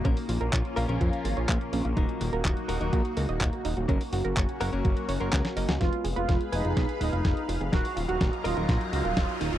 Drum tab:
HH |xooxxxoxxxoxxxox|xxoxxxoxxxoxxxox|xooxxxoxxxoxxxox|xxoxxxoxxxoxxxox|
CP |----x-------x---|----x-------x---|----x-------x---|----------------|
SD |----------------|----------------|------------oo-o|o---o---o---o---|
BD |o---o---o---o---|o---o---o---o---|o---o---o---o---|o---o---o---o---|

HH |xooxxxoxxxoxxxox|
CP |----------------|
SD |o---o---o---o---|
BD |o---o---o---o---|